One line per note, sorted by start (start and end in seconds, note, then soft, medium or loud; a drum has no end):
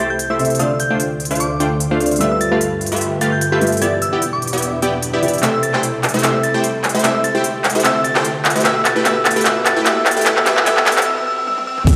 0.00 0.58 C2 medium
0.00 0.36 C3 medium
0.00 0.58 C3 medium
0.00 0.11 A3 medium
0.00 0.37 C4 medium
0.00 0.11 E4 medium
0.00 0.58 E4 medium
0.00 0.11 G4 medium
0.00 0.38 A4 medium
0.00 0.58 A4 medium
0.00 0.11 C5 medium
0.00 0.38 E5 medium
0.00 0.11 G5 loud
0.00 riser medium
0.10 0.16 G6 medium
0.19 0.26 G6 medium
0.19 closed hi-hat medium
0.30 0.57 A3 medium
0.30 0.57 E4 medium
0.30 0.57 G4 medium
0.30 0.57 C5 medium
0.30 0.57 E5 loud
0.30 0.41 E6 medium
0.38 0.55 C3 medium
0.38 0.55 C4 medium
0.38 0.55 A4 medium
0.38 0.56 E5 medium
0.38 closed hi-hat soft
0.45 closed hi-hat medium
0.50 closed hi-hat soft
0.55 0.70 D3 medium
0.55 closed hi-hat medium
0.59 2.19 D2 medium
0.59 3.78 D3 medium
0.59 0.71 A3 medium
0.59 0.70 C4 medium
0.59 0.71 D4 medium
0.59 3.78 F4 medium
0.59 0.71 F4 medium
0.59 0.70 F4 medium
0.59 2.19 C5 medium
0.59 0.71 C5 medium
0.59 0.71 D5 medium
0.59 0.71 F5 medium
0.59 0.72 E6 medium
0.59 closed hi-hat medium
0.80 0.92 G6 medium
0.80 closed hi-hat medium
0.90 1.01 A3 medium
0.90 1.01 D4 medium
0.90 1.01 F4 medium
0.90 1.01 C5 medium
0.90 1.01 G5 loud
1.00 closed hi-hat medium
1.20 closed hi-hat soft
1.25 closed hi-hat medium
1.31 1.58 A3 medium
1.31 1.58 D4 medium
1.31 1.58 F4 medium
1.31 1.58 C5 medium
1.31 1.58 F5 medium
1.31 closed hi-hat soft
1.35 closed hi-hat medium
1.40 1.71 D6 medium
1.40 closed hi-hat medium
1.60 1.72 A3 medium
1.60 1.72 D4 medium
1.60 1.72 F4 medium
1.60 1.72 C5 medium
1.60 1.72 G5 loud
1.60 closed hi-hat medium
1.80 closed hi-hat medium
1.91 2.18 A3 medium
1.91 2.18 D4 medium
1.91 2.18 F4 medium
1.91 2.18 C5 medium
1.91 2.18 F5 loud
1.99 2.18 D3 medium
1.99 2.18 C4 medium
1.99 2.18 F4 medium
1.99 2.19 D5 medium
1.99 closed hi-hat soft
2.06 closed hi-hat medium
2.11 closed hi-hat soft
2.16 3.58 G3 medium
2.16 3.59 F4 medium
2.16 closed hi-hat medium
2.20 3.80 G2 medium
2.20 2.32 A3 medium
2.20 2.32 F4 medium
2.20 2.32 G4 medium
2.20 3.59 A4 medium
2.20 3.80 A4 medium
2.20 3.80 B4 medium
2.20 2.32 B4 medium
2.20 3.60 B4 medium
2.20 2.32 E5 medium
2.20 3.80 E5 medium
2.20 3.60 E5 medium
2.20 2.28 E6 medium
2.20 closed hi-hat medium
2.32 2.38 E6 medium
2.41 2.53 A6 medium
2.41 closed hi-hat medium
2.52 2.62 A3 medium
2.52 2.62 F4 medium
2.52 2.62 G4 medium
2.52 2.62 B4 medium
2.52 2.62 F5 loud
2.61 closed hi-hat medium
2.81 closed hi-hat soft
2.86 closed hi-hat medium
2.92 3.19 A3 medium
2.92 3.19 F4 medium
2.92 3.19 G4 medium
2.92 3.19 B4 medium
2.92 3.19 E5 medium
2.92 closed hi-hat soft
2.96 closed hi-hat medium
3.01 closed hi-hat medium
3.21 3.33 A3 loud
3.21 3.33 F4 medium
3.21 3.33 G4 medium
3.21 3.33 B4 medium
3.21 3.33 F5 loud
3.21 3.30 A6 medium
3.21 closed hi-hat medium
3.32 3.38 G6 medium
3.41 3.48 G6 medium
3.41 closed hi-hat medium
3.52 3.79 A3 medium
3.52 3.79 F4 medium
3.52 3.79 G4 medium
3.52 3.79 B4 medium
3.52 3.79 E5 loud
3.52 3.63 G6 medium
3.61 3.77 G3 medium
3.61 3.77 F4 medium
3.61 3.77 A4 medium
3.61 3.78 B4 medium
3.61 3.78 E5 medium
3.61 closed hi-hat soft
3.67 closed hi-hat medium
3.72 closed hi-hat soft
3.77 3.92 E3 medium
3.77 closed hi-hat medium
3.81 5.41 E2 medium
3.81 5.41 B2 medium
3.81 3.92 B3 medium
3.81 3.93 B3 medium
3.81 5.41 D4 medium
3.81 3.93 E4 medium
3.81 3.93 G4 medium
3.81 5.41 G4 medium
3.81 3.92 G4 medium
3.81 3.93 D5 medium
3.81 3.93 E5 medium
3.81 3.94 A6 medium
3.81 closed hi-hat medium
4.02 4.31 E6 medium
4.02 closed hi-hat medium
4.13 4.23 B3 medium
4.13 4.23 E4 medium
4.13 4.23 G4 medium
4.13 4.23 D5 medium
4.13 4.23 G5 loud
4.22 closed hi-hat medium
4.33 4.62 D6 medium
4.42 closed hi-hat soft
4.47 closed hi-hat medium
4.53 4.80 B3 medium
4.53 4.80 E4 medium
4.53 4.80 G4 medium
4.53 4.80 D5 medium
4.53 4.80 E5 medium
4.53 closed hi-hat soft
4.58 closed hi-hat medium
4.62 closed hi-hat medium
4.82 4.94 B3 medium
4.82 4.94 E4 medium
4.82 4.94 G4 medium
4.82 4.94 D5 medium
4.82 4.94 G5 loud
4.82 closed hi-hat medium
5.02 closed hi-hat medium
5.13 5.41 B3 medium
5.13 5.41 E4 medium
5.13 5.41 G4 medium
5.13 5.41 D5 medium
5.13 5.41 E5 loud
5.22 5.40 E3 medium
5.22 5.40 B3 medium
5.22 5.41 G4 medium
5.22 5.41 D5 medium
5.22 closed hi-hat soft
5.28 closed hi-hat medium
5.33 closed hi-hat soft
5.38 6.20 C3 medium
5.38 6.21 C4 medium
5.38 closed hi-hat medium
5.43 7.02 C2 medium
5.43 7.02 C3 medium
5.43 5.54 A3 medium
5.43 7.02 E4 medium
5.43 5.54 E4 medium
5.43 5.54 G4 medium
5.43 7.02 A4 medium
5.43 6.22 A4 medium
5.43 5.54 C5 medium
5.43 5.54 E5 medium
5.43 6.23 E5 medium
5.43 5.50 E6 medium
5.43 clap soft
5.43 closed hi-hat medium
5.54 5.60 E6 medium
5.63 5.75 A6 medium
5.63 closed hi-hat medium
5.74 5.84 A3 medium
5.74 5.84 E4 medium
5.74 5.84 G4 medium
5.74 5.84 C5 medium
5.74 5.84 G5 medium
5.74 clap soft
5.83 closed hi-hat medium
6.03 clap medium
6.03 closed hi-hat soft
6.09 closed hi-hat medium
6.14 6.22 A3 medium
6.14 6.22 E4 medium
6.14 6.22 G4 medium
6.14 6.22 C5 medium
6.14 6.22 E5 medium
6.14 closed hi-hat soft
6.19 7.00 C3 medium
6.19 7.02 C4 medium
6.19 closed hi-hat medium
6.23 6.35 A3 medium
6.23 6.35 E4 medium
6.23 6.35 G4 medium
6.23 7.03 A4 medium
6.23 6.35 C5 medium
6.23 6.35 E5 medium
6.23 7.03 E5 medium
6.23 6.30 E6 medium
6.23 clap medium
6.23 closed hi-hat medium
6.34 6.40 E6 medium
6.43 6.56 A6 medium
6.43 closed hi-hat medium
6.54 6.64 A3 medium
6.54 6.64 E4 medium
6.54 6.65 G4 medium
6.54 6.64 C5 medium
6.54 6.64 G5 medium
6.64 closed hi-hat medium
6.84 clap medium
6.84 closed hi-hat soft
6.89 closed hi-hat medium
6.95 7.02 A3 medium
6.95 7.02 E4 medium
6.95 7.02 G4 medium
6.95 7.02 C5 medium
6.95 7.02 E5 medium
6.95 closed hi-hat soft
6.99 7.81 C3 medium
6.99 7.82 C4 medium
6.99 closed hi-hat medium
7.04 8.63 D2 medium
7.04 10.23 D3 medium
7.04 7.15 A3 medium
7.04 7.15 E4 medium
7.04 10.23 F4 medium
7.04 7.15 G4 medium
7.04 7.83 A4 medium
7.04 7.15 C5 medium
7.04 8.63 C5 medium
7.04 7.15 E5 medium
7.04 7.84 E5 medium
7.04 7.11 E6 medium
7.04 clap medium
7.04 closed hi-hat medium
7.15 7.21 E6 medium
7.24 7.36 A6 medium
7.24 closed hi-hat medium
7.35 7.45 A3 medium
7.35 7.45 E4 medium
7.35 7.45 G4 medium
7.35 7.45 C5 medium
7.35 7.45 G5 loud
7.44 closed hi-hat medium
7.64 clap medium
7.64 closed hi-hat soft
7.70 closed hi-hat medium
7.75 7.83 A3 medium
7.75 7.83 E4 medium
7.75 7.83 G4 medium
7.75 7.83 C5 medium
7.75 7.83 E5 medium
7.75 closed hi-hat soft
7.80 8.62 C3 medium
7.80 8.63 C4 medium
7.80 closed hi-hat medium
7.84 7.96 A3 medium
7.84 7.96 E4 medium
7.84 7.96 G4 medium
7.84 8.64 A4 medium
7.84 7.96 C5 medium
7.84 7.96 E5 medium
7.84 8.64 E5 medium
7.84 7.91 E6 medium
7.84 clap medium
7.84 closed hi-hat medium
7.95 8.01 E6 medium
8.04 8.17 A6 medium
8.04 closed hi-hat medium
8.15 8.25 A3 medium
8.15 8.25 E4 medium
8.15 8.25 G4 medium
8.15 8.25 C5 medium
8.15 8.25 G5 loud
8.15 clap medium
8.25 closed hi-hat medium
8.45 clap medium
8.45 closed hi-hat soft
8.50 closed hi-hat medium
8.56 8.63 A3 medium
8.56 8.63 E4 medium
8.56 8.63 G4 medium
8.56 8.63 C5 medium
8.56 8.63 E5 medium
8.56 closed hi-hat soft
8.60 9.02 B2 medium
8.60 9.03 B3 medium
8.60 closed hi-hat medium
8.65 10.24 G2 medium
8.65 8.77 A3 medium
8.65 8.77 E4 medium
8.65 8.77 G4 medium
8.65 10.24 A4 medium
8.65 9.04 A4 medium
8.65 8.77 B4 medium
8.65 10.24 B4 medium
8.65 8.76 E5 medium
8.65 10.24 E5 medium
8.65 9.05 E5 medium
8.65 8.72 E6 medium
8.65 clap medium
8.65 closed hi-hat medium
8.76 8.82 E6 medium
8.85 8.97 A6 medium
8.85 clap medium
8.85 closed hi-hat medium
8.96 9.04 A3 medium
8.96 9.04 E4 medium
8.96 9.04 G4 medium
8.96 9.04 B4 medium
8.96 9.04 G5 loud
9.03 9.42 B2 medium
9.03 9.17 A3 medium
9.03 9.43 B3 medium
9.03 9.17 E4 medium
9.03 9.17 G4 medium
9.03 9.44 A4 medium
9.03 9.17 B4 medium
9.03 9.17 E5 medium
9.03 9.45 E5 loud
9.03 9.12 E6 medium
9.03 clap medium
9.03 closed hi-hat medium
9.16 9.22 E6 medium
9.25 9.38 A6 medium
9.25 clap medium
9.25 closed hi-hat medium
9.31 closed hi-hat medium
9.36 9.44 A3 medium
9.36 9.44 E4 medium
9.36 9.44 G4 medium
9.36 9.44 B4 medium
9.36 9.44 G5 loud
9.36 closed hi-hat medium
9.41 9.82 B2 medium
9.41 9.83 B3 medium
9.41 closed hi-hat medium
9.45 9.57 A3 medium
9.45 9.57 E4 medium
9.45 9.57 G4 medium
9.45 9.84 A4 medium
9.45 9.57 B4 medium
9.45 9.57 E5 medium
9.45 9.85 E5 loud
9.45 9.52 E6 medium
9.45 clap medium
9.45 closed hi-hat medium
9.56 9.62 E6 medium
9.65 9.78 A6 medium
9.65 clap medium
9.65 closed hi-hat medium
9.76 9.84 A3 medium
9.76 9.84 E4 medium
9.76 9.84 G4 medium
9.76 9.84 B4 medium
9.76 9.84 G5 loud
9.84 10.23 B2 medium
9.84 9.97 A3 medium
9.84 10.24 B3 medium
9.84 9.97 E4 medium
9.84 9.97 G4 medium
9.84 10.25 A4 medium
9.84 9.97 B4 medium
9.84 9.97 E5 medium
9.84 9.93 E6 medium
9.84 clap medium
9.84 closed hi-hat medium
9.88 10.25 E5 medium
9.97 10.03 E6 medium
10.06 10.18 A6 medium
10.06 clap medium
10.06 closed hi-hat medium
10.11 closed hi-hat medium
10.17 10.24 A3 medium
10.17 10.24 E4 medium
10.17 10.24 G4 medium
10.17 10.24 B4 medium
10.17 10.24 G5 loud
10.17 closed hi-hat medium
10.21 10.42 B2 medium
10.21 closed hi-hat medium
10.25 10.38 A3 medium
10.25 10.44 B3 medium
10.25 10.38 E4 medium
10.25 10.38 G4 medium
10.25 10.45 A4 medium
10.25 10.38 B4 medium
10.25 10.38 E5 medium
10.25 10.46 E5 medium
10.25 10.33 E6 medium
10.25 clap loud
10.25 closed hi-hat medium
10.37 10.43 E6 medium
10.37 clap medium
10.44 10.62 B2 medium
10.44 10.58 A3 medium
10.44 10.64 B3 medium
10.44 10.58 E4 medium
10.44 10.58 G4 medium
10.44 10.65 A4 medium
10.44 10.58 B4 medium
10.44 10.58 E5 medium
10.44 10.66 E5 loud
10.44 10.53 E6 medium
10.44 clap loud
10.44 closed hi-hat medium
10.57 10.63 E6 medium
10.57 clap medium
10.64 10.83 B2 medium
10.64 10.78 A3 medium
10.64 10.84 B3 medium
10.64 10.78 E4 medium
10.64 10.78 G4 medium
10.64 10.85 A4 medium
10.64 10.78 B4 medium
10.64 10.78 E5 medium
10.64 10.73 E6 medium
10.64 clap loud
10.64 closed hi-hat medium
10.68 10.86 E5 loud
10.77 10.83 E6 medium
10.77 clap medium
10.84 11.04 B2 medium
10.84 10.98 A3 medium
10.84 11.05 B3 medium
10.84 10.98 E4 medium
10.84 10.98 G4 medium
10.84 10.98 B4 medium
10.84 10.98 E5 medium
10.84 11.06 E5 loud
10.84 10.93 E6 medium
10.84 clap loud
10.84 closed hi-hat medium
10.92 closed hi-hat medium
10.97 11.03 E6 medium
10.97 clap medium
10.97 closed hi-hat medium
11.02 closed hi-hat medium
11.07 11.14 E6 medium
11.18 11.24 E6 medium
11.27 11.34 E6 medium
11.38 11.44 E6 medium
11.47 11.54 E6 medium
11.47 high tom medium
11.58 11.64 E6 medium
11.58 high tom medium
11.67 11.74 E6 medium
11.78 11.84 E6 medium
11.78 mid tom medium
11.87 11.96 C2 medium
11.87 11.96 A3 medium
11.87 11.96 E4 medium
11.87 11.96 G4 medium
11.87 11.96 C5 medium
11.87 11.96 E5 medium
11.87 11.94 E6 medium
11.87 kick loud
11.87 closed hi-hat medium
11.87 crash loud
11.87 sub drop medium